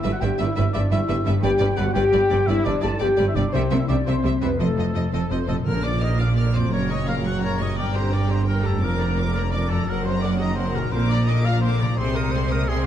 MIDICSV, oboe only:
0, 0, Header, 1, 2, 480
1, 0, Start_track
1, 0, Key_signature, 1, "major"
1, 0, Tempo, 350877
1, 1959, Time_signature, 12, 3, 24, 8
1, 7743, Key_signature, -2, "major"
1, 17599, End_track
2, 0, Start_track
2, 0, Title_t, "Oboe"
2, 0, Program_c, 0, 68
2, 0, Note_on_c, 0, 76, 83
2, 152, Note_off_c, 0, 76, 0
2, 160, Note_on_c, 0, 78, 74
2, 274, Note_off_c, 0, 78, 0
2, 282, Note_on_c, 0, 79, 75
2, 520, Note_off_c, 0, 79, 0
2, 539, Note_on_c, 0, 76, 90
2, 763, Note_off_c, 0, 76, 0
2, 771, Note_on_c, 0, 76, 86
2, 989, Note_off_c, 0, 76, 0
2, 997, Note_on_c, 0, 74, 80
2, 1107, Note_off_c, 0, 74, 0
2, 1249, Note_on_c, 0, 76, 83
2, 1713, Note_off_c, 0, 76, 0
2, 1954, Note_on_c, 0, 79, 94
2, 2424, Note_on_c, 0, 78, 98
2, 2444, Note_off_c, 0, 79, 0
2, 2638, Note_off_c, 0, 78, 0
2, 2647, Note_on_c, 0, 79, 100
2, 3368, Note_on_c, 0, 76, 114
2, 3389, Note_off_c, 0, 79, 0
2, 3614, Note_on_c, 0, 74, 92
2, 3635, Note_off_c, 0, 76, 0
2, 3858, Note_on_c, 0, 81, 100
2, 3878, Note_off_c, 0, 74, 0
2, 4097, Note_off_c, 0, 81, 0
2, 4106, Note_on_c, 0, 79, 88
2, 4459, Note_off_c, 0, 79, 0
2, 4478, Note_on_c, 0, 76, 78
2, 4587, Note_on_c, 0, 74, 78
2, 4608, Note_off_c, 0, 76, 0
2, 4833, Note_on_c, 0, 72, 83
2, 4853, Note_off_c, 0, 74, 0
2, 5183, Note_off_c, 0, 72, 0
2, 5192, Note_on_c, 0, 76, 79
2, 5304, Note_off_c, 0, 76, 0
2, 5312, Note_on_c, 0, 74, 80
2, 5419, Note_off_c, 0, 74, 0
2, 5562, Note_on_c, 0, 72, 75
2, 6023, Note_off_c, 0, 72, 0
2, 6031, Note_on_c, 0, 71, 60
2, 6142, Note_off_c, 0, 71, 0
2, 6274, Note_on_c, 0, 69, 65
2, 6994, Note_off_c, 0, 69, 0
2, 7017, Note_on_c, 0, 69, 70
2, 7262, Note_on_c, 0, 72, 62
2, 7283, Note_off_c, 0, 69, 0
2, 7488, Note_off_c, 0, 72, 0
2, 7496, Note_on_c, 0, 69, 66
2, 7606, Note_off_c, 0, 69, 0
2, 7755, Note_on_c, 0, 70, 69
2, 7986, Note_on_c, 0, 74, 72
2, 8006, Note_off_c, 0, 70, 0
2, 8226, Note_off_c, 0, 74, 0
2, 8252, Note_on_c, 0, 75, 73
2, 8474, Note_off_c, 0, 75, 0
2, 8490, Note_on_c, 0, 77, 71
2, 8593, Note_off_c, 0, 77, 0
2, 8739, Note_on_c, 0, 74, 61
2, 8976, Note_on_c, 0, 72, 67
2, 8996, Note_off_c, 0, 74, 0
2, 9202, Note_off_c, 0, 72, 0
2, 9208, Note_on_c, 0, 73, 79
2, 9433, Note_off_c, 0, 73, 0
2, 9449, Note_on_c, 0, 75, 68
2, 9674, Note_off_c, 0, 75, 0
2, 9681, Note_on_c, 0, 77, 74
2, 9787, Note_off_c, 0, 77, 0
2, 9935, Note_on_c, 0, 78, 74
2, 10158, Note_off_c, 0, 78, 0
2, 10179, Note_on_c, 0, 73, 64
2, 10422, Note_on_c, 0, 75, 71
2, 10443, Note_off_c, 0, 73, 0
2, 10634, Note_off_c, 0, 75, 0
2, 10643, Note_on_c, 0, 74, 68
2, 10747, Note_off_c, 0, 74, 0
2, 10880, Note_on_c, 0, 72, 71
2, 11110, Note_off_c, 0, 72, 0
2, 11123, Note_on_c, 0, 74, 70
2, 11367, Note_on_c, 0, 72, 73
2, 11388, Note_off_c, 0, 74, 0
2, 11586, Note_off_c, 0, 72, 0
2, 11594, Note_on_c, 0, 70, 65
2, 11841, Note_on_c, 0, 69, 65
2, 11861, Note_off_c, 0, 70, 0
2, 12085, Note_on_c, 0, 70, 71
2, 12105, Note_off_c, 0, 69, 0
2, 12762, Note_off_c, 0, 70, 0
2, 12771, Note_on_c, 0, 70, 75
2, 12882, Note_off_c, 0, 70, 0
2, 13008, Note_on_c, 0, 74, 68
2, 13273, Note_on_c, 0, 69, 69
2, 13294, Note_off_c, 0, 74, 0
2, 13527, Note_on_c, 0, 70, 62
2, 13548, Note_off_c, 0, 69, 0
2, 13732, Note_off_c, 0, 70, 0
2, 13740, Note_on_c, 0, 72, 73
2, 13970, Note_off_c, 0, 72, 0
2, 13978, Note_on_c, 0, 74, 72
2, 14088, Note_off_c, 0, 74, 0
2, 14210, Note_on_c, 0, 75, 80
2, 14419, Note_off_c, 0, 75, 0
2, 14427, Note_on_c, 0, 72, 74
2, 14707, Note_on_c, 0, 70, 67
2, 14727, Note_off_c, 0, 72, 0
2, 14936, Note_on_c, 0, 72, 86
2, 14957, Note_off_c, 0, 70, 0
2, 15173, Note_on_c, 0, 74, 77
2, 15194, Note_off_c, 0, 72, 0
2, 15421, Note_on_c, 0, 75, 76
2, 15441, Note_off_c, 0, 74, 0
2, 15668, Note_on_c, 0, 77, 81
2, 15689, Note_off_c, 0, 75, 0
2, 15876, Note_off_c, 0, 77, 0
2, 15885, Note_on_c, 0, 72, 73
2, 15996, Note_off_c, 0, 72, 0
2, 16144, Note_on_c, 0, 74, 66
2, 16387, Note_on_c, 0, 72, 75
2, 16407, Note_off_c, 0, 74, 0
2, 16618, Note_on_c, 0, 70, 80
2, 16639, Note_off_c, 0, 72, 0
2, 16847, Note_on_c, 0, 72, 82
2, 16868, Note_off_c, 0, 70, 0
2, 17090, Note_off_c, 0, 72, 0
2, 17116, Note_on_c, 0, 70, 84
2, 17345, Note_on_c, 0, 68, 72
2, 17365, Note_off_c, 0, 70, 0
2, 17592, Note_off_c, 0, 68, 0
2, 17599, End_track
0, 0, End_of_file